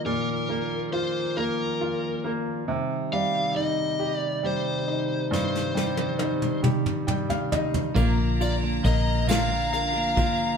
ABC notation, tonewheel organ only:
X:1
M:6/8
L:1/8
Q:3/8=46
K:Cm
V:1 name="Tonewheel organ" clef=bass
[E,F,B,FB]6 | [C,G,EG]6- | [C,G,EG]6 | [B,,D,F,B,F]6 |]